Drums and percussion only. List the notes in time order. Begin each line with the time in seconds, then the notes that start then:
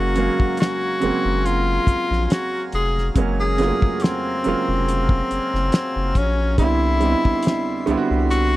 0.16 closed hi-hat
0.40 kick
0.57 closed hi-hat
0.62 snare
1.02 closed hi-hat
1.46 closed hi-hat
1.87 kick, closed hi-hat
2.12 snare
2.30 snare, closed hi-hat
2.72 closed hi-hat
2.98 snare
3.16 kick, closed hi-hat
3.58 snare, closed hi-hat
3.82 kick
4.00 closed hi-hat
4.04 snare
4.44 closed hi-hat
4.88 closed hi-hat
5.09 kick
5.31 closed hi-hat
5.55 snare
5.72 snare, closed hi-hat
6.15 kick, closed hi-hat
6.58 kick, closed hi-hat
7.01 closed hi-hat
7.25 kick
7.43 closed hi-hat
7.47 snare
7.87 closed hi-hat
8.31 closed hi-hat